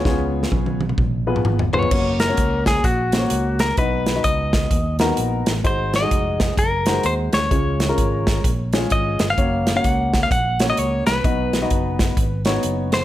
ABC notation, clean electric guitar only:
X:1
M:4/4
L:1/16
Q:"Swing" 1/4=129
K:F#
V:1 name="Clean electric guitar"
z12 z2 c2- | c2 A4 G2 F6 A2 | B4 d6 z6 | ^B2 d6 A4 B2 c2- |
c12 d3 e- | e3 f4 e f3 d c2 B2- | B8- B2 z4 ^B2 |]